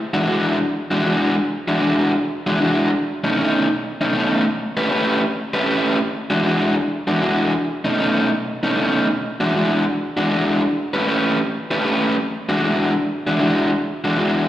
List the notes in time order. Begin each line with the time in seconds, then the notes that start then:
0.14 E3 G#3 D4 F#4
0.27 E3 G#3 D4 F#4
0.91 E3 G#3 D4 F#4
1.04 E3 G#3 D4 F#4
1.68 E3 G#3 D4 F#4
1.81 E3 G#3 D4 F#4
2.47 E3 G#3 D4 F#4
2.59 E3 G#3 D4 F#4
3.24 B2 A3 C#4 D#4
3.37 B2 A3 C#4 D#4
4.01 B2 A3 C#4 D#4
4.13 B2 A3 C#4 D#4
4.77 A3 C#4 G4 B4
4.90 A3 C#4 G4 B4
5.54 A3 C#4 G4 B4
5.66 A3 C#4 G4 B4
6.30 E3 G#3 D4 F#4
6.44 E3 G#3 D4 F#4
7.07 E3 G#3 D4 F#4
7.21 E3 G#3 D4 F#4
7.85 B2 A3 C#4 D#4
7.99 B2 A3 C#4 D#4
8.63 B2 A3 C#4 D#4
8.76 B2 A3 C#4 D#4
9.40 E3 G#3 D4 F#4
9.54 E3 G#3 D4 F#4
10.17 E3 G#3 D4 F#4
10.30 E3 G#3 D4 F#4
10.94 A3 C#4 G4 B4
11.07 A3 C#4 G4 B4
11.71 A3 C#4 G4 B4
11.84 A3 C#4 G4 B4
12.49 E3 G#3 D4 F#4
12.62 E3 G#3 D4 F#4
13.27 E3 G#3 D4 F#4
13.39 E3 G#3 D4 F#4
14.04 E3 G#3 D4 F#4
14.17 E3 G#3 D4 F#4